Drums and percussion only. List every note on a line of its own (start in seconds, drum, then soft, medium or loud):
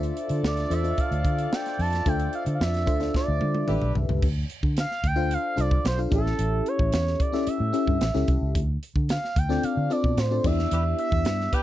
0.03 closed hi-hat medium
0.17 closed hi-hat medium
0.29 closed hi-hat medium
0.44 snare loud
0.57 snare soft
0.57 closed hi-hat soft
0.71 closed hi-hat medium
0.85 closed hi-hat soft
0.98 kick medium
0.98 closed hi-hat medium
1.12 closed hi-hat medium
1.25 kick loud
1.25 closed hi-hat medium
1.38 closed hi-hat medium
1.53 snare loud
1.66 snare soft
1.66 closed hi-hat medium
1.79 open hi-hat medium
1.93 snare soft
1.93 closed hi-hat medium
2.06 kick loud
2.06 closed hi-hat loud
2.20 closed hi-hat medium
2.33 closed hi-hat medium
2.46 closed hi-hat medium
2.61 snare loud
2.74 snare soft
2.74 closed hi-hat soft
2.87 kick loud
2.87 closed hi-hat medium
3.01 snare soft
3.01 closed hi-hat soft
3.14 kick medium
3.14 snare medium
3.41 high tom medium
3.55 high tom medium
3.68 mid tom medium
3.82 mid tom medium
3.95 floor tom loud
4.09 floor tom loud
4.22 kick loud
4.22 crash medium
4.50 closed hi-hat medium
4.63 kick medium
4.77 snare loud
4.77 closed hi-hat medium
4.91 snare soft
5.04 kick loud
5.04 closed hi-hat medium
5.31 closed hi-hat medium
5.58 closed hi-hat medium
5.71 kick medium
5.85 snare loud
5.85 closed hi-hat loud
6.12 kick loud
6.12 closed hi-hat medium
6.26 snare soft
6.39 closed hi-hat loud
6.66 closed hi-hat medium
6.79 kick medium
6.92 snare loud
6.92 closed hi-hat loud
7.07 snare soft
7.20 kick loud
7.20 closed hi-hat medium
7.34 snare soft
7.47 closed hi-hat medium
7.74 closed hi-hat medium
7.87 kick loud
8.01 snare loud
8.01 closed hi-hat loud
8.15 snare soft
8.28 kick loud
8.28 closed hi-hat medium
8.55 kick loud
8.55 closed hi-hat loud
8.83 closed hi-hat medium
8.96 kick medium
9.09 snare loud
9.09 closed hi-hat medium
9.24 snare soft
9.36 kick loud
9.36 closed hi-hat medium
9.51 snare soft
9.63 closed hi-hat medium
9.91 closed hi-hat medium
10.04 kick loud
10.18 snare loud
10.18 closed hi-hat medium
10.44 kick loud
10.44 crash medium
10.59 snare soft
10.71 closed hi-hat loud
10.99 closed hi-hat medium
11.12 kick medium
11.25 snare loud
11.25 closed hi-hat loud
11.41 snare soft
11.53 kick medium
11.53 closed hi-hat medium